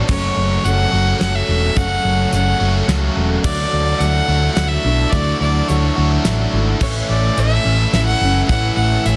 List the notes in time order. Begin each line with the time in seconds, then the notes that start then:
Already playing: F#4 C#5 C#6
0.08 F#1 F#2 C#3 F#3 A3 C#4 F#4 A4 C#5 F#5, kick, crash
0.37 F#1
0.64 F#1 F#3 A3 C#4 A4 F#5, closed hi-hat
0.92 F#1 F#2 C#3 F#3 A3 C#4 F#4
1.19 F#1 F#3 A3 C#4 A4 F#5, snare, closed hi-hat
1.35 E5
1.48 E1
1.75 F#1 F#2 C#3 F#3 A3 C#4 F#4 A4 F#5, kick, closed hi-hat
2.04 F#1
2.32 F#1 F#3 A3 C#4 A4 F#5, closed hi-hat
2.59 F#1 F#2 C#3 F#3 A3 C#4 F#4
2.88 C#2 F#3 A3 C#4 A4, snare, closed hi-hat
3.16 E1
3.43 D2 D3 F#3 A3 D4 E4 F#4 A4 D5 E5 A5, kick, crash
3.73 D2
3.99 D2 F#3 A3 F#4 A4 D5 E5 F#5, closed hi-hat
4.03 D4 E4
4.28 D2 D3 A3 D4 F#4
4.55 D2 F#3 A3 F#4 A4 D5 E5 F#5, snare, closed hi-hat
4.59 D4 E4
4.68 E5
4.83 B1 A3 D4 E4
5.10 D2 D3 F#3 A3 F#4 A4 D5 E5, kick, closed hi-hat
5.14 A3 D4 E4 F#4
5.40 D2 D5
5.68 D2 F#3 A3 D4 E4 F#4 A4 C#5 E5, closed hi-hat
5.96 D2 D3 A3 D4 F#4
6.25 A1 F#3 A3 D4 E4 F#4 A4 D5 E5, snare, closed hi-hat
6.52 G#1 A3 D4 E4
6.80 A1 A2 E3 A3 C#4 E4 A4 C#5 E5 C#6, kick, crash
6.84 E4
7.09 A1 D5
7.37 A1 E3 A3 C#4 E4 A4 C#5 E5, closed hi-hat
7.64 A1 A2 E3 A3 C#4 E4
7.93 A1 E3 A3 C#4 E4 A4 C#5 E5, snare, closed hi-hat
8.06 F#5
8.21 F#1 C#4 E4
8.25 A3
8.48 A1 A2 E3 A3 C#4 E4 A4 C#5 E5 F#5, kick, closed hi-hat
8.52 C#4 E4
8.76 A1 F#5
9.05 A1 E3 A3 C#4 E4 A4 C#5 E5, closed hi-hat
9.10 E4